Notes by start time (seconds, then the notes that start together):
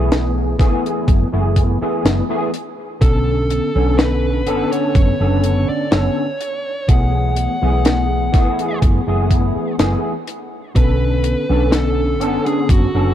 Already playing: B1 E3 A3 B3 G#4
0.12 snare, closed hi-hat
0.58 F#1 E3 A3 B3 G#4, kick, snare, closed hi-hat
0.86 closed hi-hat
1.08 F#1, kick, closed hi-hat
1.32 F#1 E3 A3 B3 G#4
1.56 kick, closed hi-hat
1.81 E3 A3 B3 G#4, muted fingered electric bass stroke
2.05 F#1, snare, closed hi-hat
2.29 E3 A3 B3 G#4
2.54 closed hi-hat
3.01 B1 D3 B3 C#4 A4, kick, closed hi-hat
3.50 closed hi-hat
3.75 B1 D3 B3 C#4 A4
3.98 B4, snare, closed hi-hat
4.46 F#1 D3 B3 C#4 A4, closed hi-hat
4.72 C#5, closed hi-hat
4.95 F#1 C#5, kick, closed hi-hat
5.20 F#1 D3 B3 C#4 A4
5.44 closed hi-hat
5.69 D5, muted fingered electric bass stroke
5.91 F#1 D3 B3 C#4 A4 C#5, snare, closed hi-hat
6.41 closed hi-hat
6.88 B1 E3 A3 B3 G#4 F#5, kick, closed hi-hat
7.36 closed hi-hat
7.62 B1 E3 A3 B3 G#4
7.85 snare, closed hi-hat
8.33 F#1 E3 A3 B3 G#4, kick, snare, closed hi-hat
8.59 closed hi-hat
8.82 F#1, kick, closed hi-hat
9.06 F#1 E3 A3 B3 G#4
9.31 kick, closed hi-hat
9.56 muted fingered electric bass stroke
9.78 F#1 E3 A3 B3 G#4, snare, closed hi-hat
10.27 closed hi-hat
10.75 B1 D3 B3 C#4 A4 B4, kick, closed hi-hat
11.24 closed hi-hat
11.49 B1 D3 B3 C#4 A4
11.72 A4, snare, closed hi-hat
12.20 F#1 D3 B3 C#4 A4, closed hi-hat
12.46 G#4, closed hi-hat
12.69 F#1 F#4, kick, closed hi-hat
12.94 F#1 D3 B3 C#4 A4